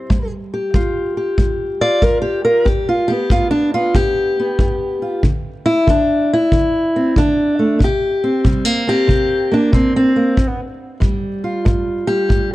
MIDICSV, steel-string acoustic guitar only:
0, 0, Header, 1, 2, 480
1, 0, Start_track
1, 0, Tempo, 641711
1, 76, Time_signature, 4, 2, 24, 8
1, 9385, End_track
2, 0, Start_track
2, 0, Title_t, "Steel-string acoustic guitar"
2, 0, Program_c, 0, 25
2, 0, Note_on_c, 0, 55, 44
2, 0, Note_on_c, 0, 72, 92
2, 73, Note_off_c, 0, 55, 0
2, 73, Note_on_c, 0, 55, 75
2, 237, Note_off_c, 0, 72, 0
2, 401, Note_on_c, 0, 67, 48
2, 521, Note_off_c, 0, 55, 0
2, 555, Note_on_c, 0, 55, 77
2, 558, Note_on_c, 0, 65, 47
2, 873, Note_off_c, 0, 67, 0
2, 876, Note_on_c, 0, 67, 45
2, 1001, Note_off_c, 0, 55, 0
2, 1030, Note_on_c, 0, 55, 79
2, 1347, Note_off_c, 0, 65, 0
2, 1355, Note_on_c, 0, 65, 51
2, 1356, Note_on_c, 0, 74, 101
2, 1478, Note_off_c, 0, 55, 0
2, 1510, Note_on_c, 0, 55, 79
2, 1512, Note_off_c, 0, 67, 0
2, 1513, Note_off_c, 0, 74, 0
2, 1515, Note_on_c, 0, 70, 92
2, 1654, Note_off_c, 0, 70, 0
2, 1657, Note_on_c, 0, 67, 81
2, 1824, Note_off_c, 0, 67, 0
2, 1826, Note_off_c, 0, 65, 0
2, 1829, Note_on_c, 0, 70, 90
2, 1835, Note_on_c, 0, 65, 46
2, 1959, Note_off_c, 0, 55, 0
2, 1975, Note_off_c, 0, 65, 0
2, 1984, Note_on_c, 0, 67, 74
2, 1988, Note_on_c, 0, 43, 75
2, 1990, Note_off_c, 0, 70, 0
2, 2148, Note_off_c, 0, 67, 0
2, 2159, Note_on_c, 0, 65, 75
2, 2303, Note_on_c, 0, 67, 93
2, 2315, Note_off_c, 0, 65, 0
2, 2320, Note_on_c, 0, 59, 51
2, 2437, Note_off_c, 0, 43, 0
2, 2467, Note_off_c, 0, 67, 0
2, 2475, Note_on_c, 0, 43, 79
2, 2477, Note_on_c, 0, 65, 87
2, 2620, Note_off_c, 0, 65, 0
2, 2623, Note_on_c, 0, 62, 89
2, 2787, Note_off_c, 0, 62, 0
2, 2795, Note_off_c, 0, 59, 0
2, 2798, Note_on_c, 0, 65, 86
2, 2805, Note_on_c, 0, 59, 40
2, 2921, Note_off_c, 0, 43, 0
2, 2954, Note_off_c, 0, 65, 0
2, 2956, Note_on_c, 0, 67, 95
2, 2957, Note_on_c, 0, 43, 77
2, 3277, Note_off_c, 0, 59, 0
2, 3288, Note_on_c, 0, 59, 47
2, 3402, Note_off_c, 0, 43, 0
2, 3437, Note_on_c, 0, 43, 75
2, 3755, Note_on_c, 0, 65, 41
2, 3882, Note_off_c, 0, 43, 0
2, 3894, Note_off_c, 0, 65, 0
2, 3901, Note_off_c, 0, 59, 0
2, 3912, Note_on_c, 0, 50, 78
2, 3913, Note_off_c, 0, 67, 0
2, 4231, Note_on_c, 0, 64, 103
2, 4359, Note_off_c, 0, 50, 0
2, 4390, Note_on_c, 0, 50, 71
2, 4392, Note_off_c, 0, 64, 0
2, 4412, Note_on_c, 0, 62, 89
2, 4720, Note_off_c, 0, 62, 0
2, 4738, Note_on_c, 0, 64, 97
2, 4839, Note_off_c, 0, 50, 0
2, 4877, Note_on_c, 0, 50, 81
2, 5207, Note_on_c, 0, 60, 50
2, 5322, Note_off_c, 0, 50, 0
2, 5360, Note_off_c, 0, 60, 0
2, 5365, Note_on_c, 0, 50, 74
2, 5366, Note_off_c, 0, 64, 0
2, 5369, Note_on_c, 0, 62, 94
2, 5678, Note_on_c, 0, 57, 41
2, 5807, Note_off_c, 0, 50, 0
2, 5817, Note_off_c, 0, 57, 0
2, 5828, Note_on_c, 0, 48, 75
2, 5841, Note_off_c, 0, 62, 0
2, 5866, Note_on_c, 0, 67, 82
2, 6161, Note_on_c, 0, 60, 52
2, 6279, Note_off_c, 0, 48, 0
2, 6316, Note_on_c, 0, 48, 77
2, 6320, Note_on_c, 0, 55, 50
2, 6330, Note_off_c, 0, 67, 0
2, 6469, Note_off_c, 0, 55, 0
2, 6469, Note_on_c, 0, 58, 43
2, 6629, Note_off_c, 0, 60, 0
2, 6638, Note_on_c, 0, 60, 46
2, 6649, Note_on_c, 0, 67, 116
2, 6764, Note_off_c, 0, 48, 0
2, 6788, Note_on_c, 0, 48, 75
2, 7108, Note_off_c, 0, 58, 0
2, 7117, Note_off_c, 0, 60, 0
2, 7117, Note_on_c, 0, 58, 48
2, 7122, Note_off_c, 0, 67, 0
2, 7133, Note_on_c, 0, 62, 97
2, 7239, Note_off_c, 0, 48, 0
2, 7274, Note_on_c, 0, 48, 82
2, 7284, Note_off_c, 0, 62, 0
2, 7287, Note_on_c, 0, 60, 85
2, 7441, Note_off_c, 0, 60, 0
2, 7452, Note_on_c, 0, 60, 90
2, 7592, Note_off_c, 0, 58, 0
2, 7601, Note_on_c, 0, 58, 46
2, 7723, Note_off_c, 0, 48, 0
2, 7740, Note_off_c, 0, 58, 0
2, 7756, Note_on_c, 0, 43, 85
2, 7925, Note_off_c, 0, 60, 0
2, 8205, Note_off_c, 0, 43, 0
2, 8229, Note_on_c, 0, 43, 74
2, 8235, Note_on_c, 0, 55, 52
2, 8556, Note_on_c, 0, 65, 50
2, 8682, Note_off_c, 0, 43, 0
2, 8715, Note_on_c, 0, 43, 81
2, 9026, Note_off_c, 0, 55, 0
2, 9031, Note_on_c, 0, 67, 99
2, 9035, Note_on_c, 0, 55, 49
2, 9165, Note_off_c, 0, 43, 0
2, 9193, Note_on_c, 0, 43, 80
2, 9355, Note_off_c, 0, 67, 0
2, 9385, Note_off_c, 0, 43, 0
2, 9385, Note_off_c, 0, 55, 0
2, 9385, Note_off_c, 0, 65, 0
2, 9385, End_track
0, 0, End_of_file